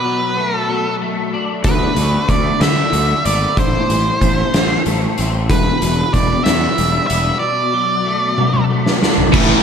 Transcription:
Already playing: clean electric guitar B2 B3, lead electric guitar B4
0.05 clean electric guitar F#3
0.37 clean electric guitar A3
0.55 lead electric guitar A4
0.69 clean electric guitar F#3
1.01 clean electric guitar A3
1.33 clean electric guitar D4
1.64 fingered electric bass D2, clean electric guitar D3, lead electric guitar B4, kick, closed hi-hat
1.96 fingered electric bass D2, clean electric guitar A3, closed hi-hat
2.29 fingered electric bass D2, clean electric guitar A3, lead electric guitar D5, kick, closed hi-hat
2.61 fingered electric bass D3, clean electric guitar D3, lead electric guitar E5, snare, closed hi-hat
2.93 fingered electric bass D2, clean electric guitar A3, closed hi-hat
3.25 fingered electric bass G#1, clean electric guitar B3, lead electric guitar D5, closed hi-hat
3.57 fingered electric bass A1, clean electric guitar A2, lead electric guitar C5, kick, closed hi-hat
3.89 fingered electric bass A1, clean electric guitar E3, closed hi-hat
4.21 fingered electric bass A1, clean electric guitar A3, kick, closed hi-hat
4.53 fingered electric bass A1, clean electric guitar E3, snare, closed hi-hat
4.86 fingered electric bass A1, clean electric guitar A3, closed hi-hat
5.18 fingered electric bass A1, clean electric guitar C4, closed hi-hat
5.49 fingered electric bass E1, clean electric guitar E2, lead electric guitar B4, kick, closed hi-hat
5.81 fingered electric bass E1, clean electric guitar B2, closed hi-hat
6.13 fingered electric bass E1, clean electric guitar G3, lead electric guitar D5, kick, closed hi-hat
6.44 fingered electric bass E2, clean electric guitar E3, lead electric guitar E5, snare, closed hi-hat
6.78 fingered electric bass E1, clean electric guitar G3, closed hi-hat
7.07 fingered electric bass E1, clean electric guitar B3, lead electric guitar E5, closed hi-hat
7.39 clean electric guitar B2, lead electric guitar D5
7.73 clean electric guitar F#3
8.05 clean electric guitar A3
8.38 clean electric guitar F#3, high tom
8.54 high tom
8.70 clean electric guitar A3
8.86 snare
9.02 clean electric guitar D4, snare
9.18 floor tom
9.33 fingered electric bass A1, distorted electric guitar A2 E3 A3 C#4 E4, kick, crash

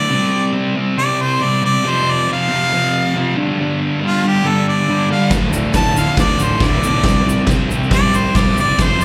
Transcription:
Already playing: distorted electric guitar D3, harmonica D5
0.10 distorted electric guitar C3 G3 C4
0.52 distorted electric guitar C3 G3 C4
0.75 distorted electric guitar C3 G3 C4
0.97 distorted electric guitar C3 G3 C4, harmonica D5
1.21 harmonica C5
1.41 distorted electric guitar C3 G3 C4, harmonica D5
1.62 distorted electric guitar C3 G3 C4, harmonica D5
1.83 distorted electric guitar F2 C3 F3
1.90 harmonica C5
2.11 harmonica D5
2.27 distorted electric guitar F2 C3 F3
2.33 harmonica F5
2.49 distorted electric guitar F2 C3 F3
2.73 distorted electric guitar F2 C3 F3
3.15 distorted electric guitar F2 C3 F3
3.36 distorted electric guitar G2 D3 G3
3.59 distorted electric guitar G2 D3 G3
4.00 distorted electric guitar G2 D3 G3
4.07 harmonica F4
4.24 distorted electric guitar G2 D3 G3, harmonica G4
4.43 distorted electric guitar G2 D3 G3
4.47 harmonica A4
4.68 harmonica D5
4.89 distorted electric guitar G2 D3 G3
5.10 distorted electric guitar G2 D3 G3, harmonica F5
5.30 picked electric bass D1, distorted electric guitar D2 A2 D3, kick, snare, crash, shaker
5.50 picked electric bass D1, shaker
5.74 picked electric bass D1, distorted electric guitar D2 A2 D3, harmonica A5, kick, snare, crash, shaker
5.94 picked electric bass D1, distorted electric guitar D2 A2, shaker
5.98 distorted electric guitar D3, harmonica F5
6.17 picked electric bass D1, distorted electric guitar D2 A2, harmonica D5, kick, snare, crash, shaker
6.21 distorted electric guitar D3
6.37 picked electric bass D1, shaker
6.43 harmonica C5
6.60 picked electric bass D1, distorted electric guitar D2 A2, harmonica D5, kick, snare, crash, shaker
6.64 distorted electric guitar D3
6.81 picked electric bass B1, shaker
6.86 distorted electric guitar D2 A2 D3
7.03 picked electric bass C2, distorted electric guitar C3 G3, kick, snare, crash
7.08 distorted electric guitar C4, shaker
7.25 picked electric bass C2
7.29 shaker
7.47 picked electric bass C2, distorted electric guitar C3 G3, kick, snare, crash, shaker
7.51 distorted electric guitar C4
7.70 distorted electric guitar C3 G3 C4, shaker
7.83 shaker
7.90 picked electric bass C2, distorted electric guitar C3 G3 C4, kick, snare, crash, shaker
7.95 harmonica D5
8.14 harmonica C5, shaker
8.35 picked electric bass C2, distorted electric guitar C3 G3 C4, harmonica D5, kick, snare, crash, shaker
8.55 picked electric bass F#1, distorted electric guitar C3, shaker
8.59 distorted electric guitar G3 C4, harmonica D5
8.79 picked electric bass F1, distorted electric guitar F2 C3 F3, kick, snare, crash, shaker
8.83 harmonica C5
8.98 picked electric bass F1, shaker

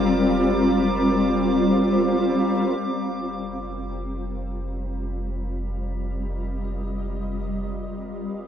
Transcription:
Already playing: analog synth bass F1, ambient pad G3 C4 F4 A#4 D5, synth texture D6
2.78 analog synth bass F1, ambient pad G3
5.26 ambient pad D#5
8.33 analog synth bass F1

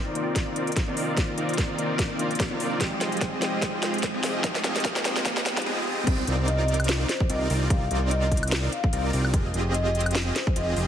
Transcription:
Already playing: tine electric piano D#3 A#3 C4 F4 D5, supersaw synth C4 D#4 F4 A#4 D5, riser
0.13 tine electric piano D#3 A#3 C4 D5, closed hi-hat
0.17 tine electric piano F4
0.36 kick, snare, closed hi-hat
0.56 supersaw synth C4 D#4 F4 A#4 D5, closed hi-hat
0.67 closed hi-hat
0.72 closed hi-hat
0.76 kick, snare, closed hi-hat
0.88 supersaw synth C4 D#4 F4 A#4 D5
0.97 open hi-hat
1.15 tine electric piano D#3 A#3 C4 F4 D5, supersaw synth C4 D#4 F4 A#4 D5, kick, snare, closed hi-hat
1.38 supersaw synth C4 D#4 F4 A#4 D5, closed hi-hat
1.49 closed hi-hat
1.54 closed hi-hat
1.58 kick, snare, closed hi-hat
1.77 tine electric piano D#3 A#3 C4 F4 D5, closed hi-hat
1.99 kick, snare, closed hi-hat
2.17 tine electric piano D#3 A#3 C4 D4 F4, supersaw synth C4 D#4 F4 A#4 D5, closed hi-hat
2.31 closed hi-hat
2.35 closed hi-hat
2.40 kick, snare, closed hi-hat
2.51 supersaw synth C4 D#4 F4 A#4 D5
2.60 open hi-hat
2.78 tine electric piano F3 G#3 C4 D#4, supersaw synth C4 F4 G4 G#4 D#5, kick, snare, closed hi-hat
2.83 tine electric piano G5
3.01 supersaw synth C4 F4 G4 G#4 D#5, snare, closed hi-hat
3.12 closed hi-hat
3.17 closed hi-hat
3.21 kick, snare, closed hi-hat
3.40 tine electric piano F3 G#3 C4 D#4, snare, closed hi-hat
3.44 tine electric piano G5
3.62 kick, snare, closed hi-hat
3.82 supersaw synth C4 F4 G4 G#4 D#5, snare, closed hi-hat
3.94 closed hi-hat
3.98 closed hi-hat
4.03 kick, snare, closed hi-hat
4.14 supersaw synth C4 F4 G4 G#4 D#5
4.23 snare, open hi-hat
4.42 tine electric piano F3 G#3 C4 D#4, supersaw synth C4 F4 G4 G#4 D#5, kick, snare, closed hi-hat
4.46 tine electric piano G5
4.55 snare
4.64 supersaw synth C4 F4 G4 G#4 D#5, snare, closed hi-hat
4.76 snare, closed hi-hat
4.80 closed hi-hat
4.85 kick, snare, closed hi-hat
4.96 snare
5.04 tine electric piano F3 G#3 C4 D#4 G5, snare, closed hi-hat
5.16 snare
5.25 kick, snare, closed hi-hat
5.37 snare
5.46 snare, closed hi-hat
5.56 tine electric piano F3 G#3 C4 D#4 G4, snare, closed hi-hat
5.62 closed hi-hat
5.66 supersaw synth C4 F4 G4 G#4 D#5
5.87 supersaw synth C4 F4 G4 G#4 D#5
6.07 analog synth bass C2, supersaw synth C4 D#4 F4 A#4 D5, kick, closed hi-hat, crash
6.27 analog synth bass C2, supersaw synth C4 D#4 F4 A#4 D5, closed hi-hat
6.48 vibraphone D#5, closed hi-hat
6.59 vibraphone D#5
6.68 closed hi-hat
6.74 closed hi-hat
6.80 closed hi-hat, high woodblock
6.84 closed hi-hat
6.89 snare, closed hi-hat
7.09 vibraphone C5, snare, closed hi-hat
7.20 kick
7.29 analog synth bass C2, supersaw synth C4 D#4 F4 A#4 D5, vibraphone D#5, closed hi-hat
7.50 analog synth bass C2, supersaw synth C4 D#4 F4 A#4 D5, open hi-hat
7.70 analog synth bass C2, supersaw synth C4 D#4 F4 A#4 D5, vibraphone F5, kick, closed hi-hat
7.91 analog synth bass C2, supersaw synth C4 D#4 F4 A#4 D5, closed hi-hat
8.11 vibraphone D#5, closed hi-hat
8.23 vibraphone D#5
8.32 kick, closed hi-hat
8.37 closed hi-hat
8.43 closed hi-hat, high woodblock
8.47 closed hi-hat
8.52 snare, closed hi-hat
8.72 vibraphone F5, closed hi-hat
8.84 kick
8.93 analog synth bass C2, supersaw synth C4 D#4 F4 A#4 D5, closed hi-hat
9.13 analog synth bass C2, supersaw synth C4 D#4 F4 A#4 D5, open hi-hat
9.25 high woodblock
9.34 analog synth bass F1, supersaw synth C4 F4 G4 G#4 D#5, kick, closed hi-hat
9.54 analog synth bass F1, supersaw synth C4 F4 G4 G#4 D#5, closed hi-hat
9.74 vibraphone D#5, closed hi-hat
9.86 vibraphone D#5
9.95 closed hi-hat
10.01 closed hi-hat
10.06 closed hi-hat, high woodblock
10.11 closed hi-hat
10.15 snare, closed hi-hat
10.36 vibraphone C5, snare, closed hi-hat
10.47 kick
10.56 analog synth bass F1, supersaw synth C4 F4 G4 G#4 D#5, vibraphone D#5, closed hi-hat
10.76 analog synth bass F1, supersaw synth C4 F4 G4 G#4 D#5, open hi-hat

